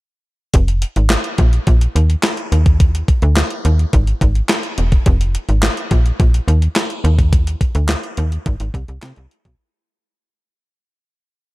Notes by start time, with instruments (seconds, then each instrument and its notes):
0.54 fm bass F1, kick, closed hi-hat
0.68 closed hi-hat
0.82 closed hi-hat
0.96 fm bass G#1, closed hi-hat
1.10 snare, clap, closed hi-hat
1.24 closed hi-hat
1.38 fm bass A#1, kick, closed hi-hat
1.53 closed hi-hat
1.67 fm bass A#1, kick, closed hi-hat
1.81 closed hi-hat
1.96 fm bass D#2, closed hi-hat
2.10 closed hi-hat
2.23 snare, clap, closed hi-hat
2.37 closed hi-hat
2.52 fm bass D#2, closed hi-hat
2.66 kick, closed hi-hat
2.80 kick, closed hi-hat
2.95 closed hi-hat
3.08 kick, closed hi-hat
3.22 fm bass D2, closed hi-hat
3.37 snare, clap, closed hi-hat
3.50 closed hi-hat
3.65 fm bass D#2, closed hi-hat
3.79 closed hi-hat
3.93 fm bass G#1, kick, closed hi-hat
4.07 closed hi-hat
4.21 fm bass G#1, kick, closed hi-hat
4.35 closed hi-hat
4.49 snare, clap, closed hi-hat
4.63 closed hi-hat
4.78 fm bass E1, closed hi-hat
4.92 kick, closed hi-hat
5.06 fm bass F1, kick, closed hi-hat
5.21 closed hi-hat
5.35 closed hi-hat
5.49 fm bass G#1, closed hi-hat
5.63 snare, clap, closed hi-hat
5.77 closed hi-hat
5.91 fm bass A#1, kick, closed hi-hat
6.06 closed hi-hat
6.20 fm bass A#1, kick, closed hi-hat
6.34 closed hi-hat
6.48 fm bass D#2, closed hi-hat
6.62 closed hi-hat
6.76 snare, clap, closed hi-hat
6.90 closed hi-hat
7.04 fm bass D#2, closed hi-hat
7.19 kick, closed hi-hat
7.33 kick, closed hi-hat
7.47 closed hi-hat
7.61 kick, closed hi-hat
7.75 fm bass D2, closed hi-hat
7.89 snare, clap, closed hi-hat
8.04 closed hi-hat
8.17 fm bass D#2, closed hi-hat
8.32 closed hi-hat
8.46 fm bass G#1, kick, closed hi-hat
8.60 fm bass G#1, closed hi-hat
8.74 fm bass C2, kick, closed hi-hat
8.88 fm bass C2, closed hi-hat
9.03 fm bass C3, snare, clap, closed hi-hat
9.16 fm bass C2, closed hi-hat
9.31 closed hi-hat
9.45 fm bass B1, kick, closed hi-hat